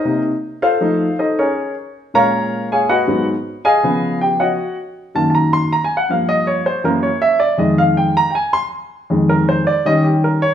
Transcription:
X:1
M:4/4
L:1/8
Q:1/4=159
K:Fm
V:1 name="Grand piano"
[Bce] z2 [F=Acf]3 [EAce] [D_ABd]- | [DABd] z2 [Bdfb]3 [Adfa] [_G=Be_g]- | [_G=Be_g] z2 [Aefa]3 [=G=g] [_Gde_g]- | [_Gde_g] z2 =a [ab] c' (3b _a g |
f e d c B d _f =d | e f g b [ga] c' z2 | z B c =d e G B _d |]
V:2 name="Grand piano" clef=bass
[C,B,E] z3 [F,=A,E] z3 | z3 [B,,A,D]4- [B,,A,D] | [A,,_G,_C] z3 [D,F,C]4 | z3 [_G,,E,B,]3 z2 |
[G,,F,B,]3 z [_G,,_F,B,] z3 | [F,,E,A,]3 z4 z | [F,,E,A,]3 z [E,G,D]3 z |]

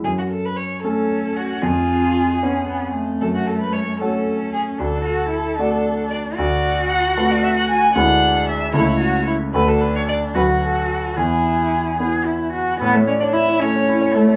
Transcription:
X:1
M:6/8
L:1/16
Q:3/8=76
K:F#m
V:1 name="Violin"
G F A B c2 A4 F2 | G8- G2 z2 | A F A B c2 A4 G2 | A8- A2 d2 |
[K:A] d4 f2 f d e f g2 | f4 e2 c4 z2 | B A B c d2 B2 A4 | G6 z6 |
B A c d e2 c4 A2 |]
V:2 name="Grand piano"
F,,6 [A,CA]6 | ^E,,6 [B,Cc]6 | F,,6 [A,Fc]6 | D,,6 [A,Fd]6 |
[K:A] D,,6 [A,FB]6 | [D,,G,EB]6 [C,,A,EA]6 | [D,,A,FA]6 [D,,F,FB]6 | E,,6 [B,EB]6 |
A,, c d c E c A, c E c A, c |]
V:3 name="Cello"
z6 C6 | ^E6 C2 B,2 A,2- | A,6 C6 | D2 F2 E2 D6 |
[K:A] F12 | D6 E2 F2 E2 | D6 F6 | E6 G2 E2 F2 |
B, A, C D E2 C4 A,2 |]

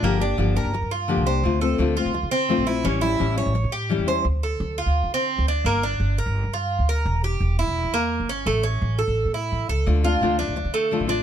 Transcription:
X:1
M:4/4
L:1/16
Q:1/4=171
K:Dm
V:1 name="Cuban tres"
B,2 D4 B4 F4 c2- | c2 A4 F4 C4 E2 | ^C2 E4 ^c4 G4 =c2 | z2 A4 F4 C4 D2 |
B,2 D4 B4 F4 B2- | B2 G4 E4 B,4 ^C2 | A,2 ^C4 A4 E4 A2- | A2 F4 D4 A,4 D2 |]
V:2 name="Nylon-string guitar"
[D,F,B,DG]2 [B,DG]2 [D,F,B,DG]2 [B,DG]2 z4 [D,F,B,DG]2 [B,DG]2 | [D,A,CF]2 [A,CF]2 [D,A,CF]2 [A,CF]2 z4 [D,A,CF]2 [A,CF]2 | [E,G,^CE]2 [G,CE]2 [E,G,CE]2 [G,CE]2 z4 [E,G,CE]2 [G,CE]2 | z16 |
z16 | z16 | z16 | [D,A,DF]2 [A,DF]2 [D,A,DF]2 [A,DF]2 z4 [D,A,DF]2 [A,DF]2 |]
V:3 name="Upright bass" clef=bass
G,,,4 G,,,3 G,,,2 G,,4 C,,3 | D,,4 D,,3 D,,2 D,4 B,,,3 | A,,,4 A,,,3 A,,,2 A,,4 E,,3 | D,,4 D,,3 D,,2 D,4 D,,3 |
G,,,4 G,,,3 G,,,2 G,,4 D,,3 | E,,,4 E,,,3 E,,,2 E,,4 G,,,3 | A,,,4 A,,,3 A,,,2 A,,3 A,,,2 ^C,,2 | D,,4 D,,3 D,,2 D,4 A,,,3 |]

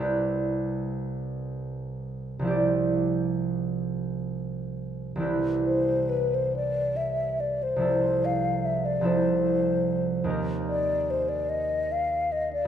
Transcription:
X:1
M:6/8
L:1/16
Q:3/8=48
K:Dm
V:1 name="Flute"
z12 | z12 | z2 c2 =B c d2 e2 d c- | c2 f2 e d c6 |
z2 d2 c d _e2 f2 e d |]
V:2 name="Harp"
[C,,G,EG=B]12 | [C,,F,EGd]12 | [C,,E,EG=B]12 | [C,,F,EA]6 [C,,F,EA]6 |
[_E,,_E,_EGB]12 |]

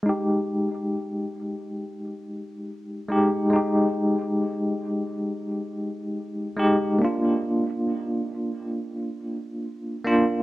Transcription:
X:1
M:4/4
L:1/8
Q:1/4=69
K:Eb
V:1 name="Tine electric piano"
[A,EG]6- [A,EG] [A,EG] | [A,EG]6- [A,EG] [A,EG] | [B,DF]6- [B,DF] [B,DF] |]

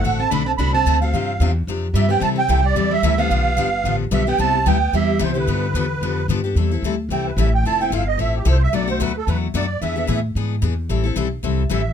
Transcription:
X:1
M:4/4
L:1/8
Q:"Swing" 1/4=221
K:Gmix
V:1 name="Accordion"
^f a b a b a2 =f- | f3 z3 e g | a g2 d2 e2 f- | f4- f z e g |
a2 g2 e2 c B- | B6 z2 | [K:Am] z4 g B e g | a g f ^d e G c e |
d c B A B z d2 | e3 z4 z | z6 e2 |]
V:2 name="Steel-string acoustic guitar"
[D,A,C^FA] z [D,A,CFA] z [D,A,CFA] z [D,A,CFA] [CFA] | [C,F,CDG] z [C,F,CDG] z [C,F,CDG] z [C,F,CDG] [CDG] | [C,E,G,CEA] z [C,E,G,CEA] z [C,E,G,CEA] z [C,E,G,CEA] [G,CEA] | [D,F,B,DG] z [D,F,B,DG] z [D,F,B,DG] z [D,F,B,DG] [B,DG] |
[C,G,B,EG] z [C,G,B,EG] z [C,G,B,EG] z [C,G,B,EG] [B,EG] | [D,F,B,DG] z [D,F,B,DG] z [D,F,B,DG] z [D,F,B,DG] [B,DG] | [K:Am] [E,G,CEA] [CEA] [E,G,CEA] z [E,G,CEA] z [E,G,CEA] z | [F,CEA] [CEA] [F,CEA] z [F,CEA] z [F,CEA] z |
[B,,^F,A,D^F] [A,DF] [B,,F,A,DF] z [B,,F,A,DF] z [B,,F,A,DF] z | [E,B,D^G] [B,DG] [E,B,DG] z [E,B,DG] z [E,B,DG] z | [E,G,CEA] [CEA] [E,G,CEA] z [E,G,CEA] z [E,G,CEA] z |]
V:3 name="Steel-string acoustic guitar"
A, C D C D C2 C- | C3 z3 G, B, | C C2 G,2 G,2 B,- | B,4- B, z G, B, |
C2 B,2 G,2 E, D,- | D,6 z2 | [K:Am] z8 | z8 |
z8 | z8 | z8 |]
V:4 name="Upright bass" clef=bass
A,,,2 B,,,2 C,,2 D,,2 | G,,2 E,,2 F,,2 G,,2 | C,2 C,,2 E,,2 D,,2 | B,,,2 G,,,2 A,,,2 B,,,2 |
C,,2 D,,2 E,,2 C,,2 | G,,2 E,,2 F,,2 G,,2 | [K:Am] E,,2 D,,2 C,,2 A,,,2 | F,,,2 G,,,2 A,,,2 C,,2 |
B,,,2 D,,2 E,,2 ^F,,2 | E,,2 A,,2 ^G,,2 E,,2 | A,,,2 B,,,2 C,,2 A,,,2 |]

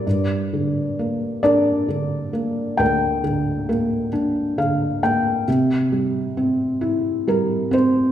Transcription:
X:1
M:6/8
L:1/8
Q:3/8=45
K:Gdor
V:1 name="Felt piano"
[Bd]3 [Bd]3 | [Bg]3 z f g | z4 B c |]
V:2 name="Felt piano" clef=bass
G,, D, B, D D, B, | D,, D, B, D D, B, | C, G, C E G, C |]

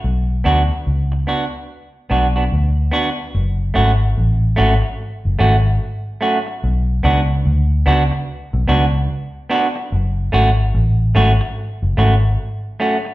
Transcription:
X:1
M:4/4
L:1/16
Q:"Swing 16ths" 1/4=73
K:F#m
V:1 name="Clean electric guitar"
z2 [B,DF] z3 [B,DF] z3 [B,DF] [B,DF] z2 [B,DF] z | z2 [A,CF] z3 [A,CF] z3 [A,CF] z3 [A,CF] z | z2 [B,DF] z3 [B,DF] z3 [B,DF] z3 [B,DF] z | z2 [A,CF] z3 [A,CF] z3 [A,CF] z3 [A,CF] z |]
V:2 name="Fingered electric bass" clef=bass
B,,,2 D,, z C,,2 z4 B,,,2 D,,2 z2 | F,,,2 G,,,2 A,,,2 G,,, z2 F,,, G,,,2 z4 | B,,,2 C,,2 D,,2 C,, z2 B,,, C,,2 z4 | F,,,2 G,,,2 A,,,2 G,,, z2 F,,, G,,,2 z4 |]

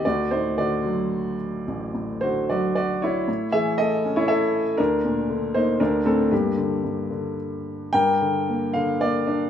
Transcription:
X:1
M:3/4
L:1/16
Q:1/4=115
K:Gm
V:1 name="Grand piano"
[^Fd]2 [Ec]2 [Fd]6 z2 | z4 [^Fc]2 [Fd]2 [Fd]2 [=E^c]2- | [=E^c]2 [_A=e]2 [=A_e]3 [=Ec] [A=e]3 z | [DB]6 [Ec]2 [DB]2 [CA]2 |
[B,G]8 z4 | [Bg]6 f2 d4 |]
V:2 name="Grand piano" clef=bass
D,,2 A,,2 D,2 ^F,6 | A,,,2 A,,2 D,2 ^F,6 | A,,2 =E,2 A,2 ^C6 | D,,2 B,,2 D,2 B,2 D,,2 A,,2 |
G,,2 D,2 G,,2 D,6 | G,,2 D,2 B,2 D,2 B,2 D2 |]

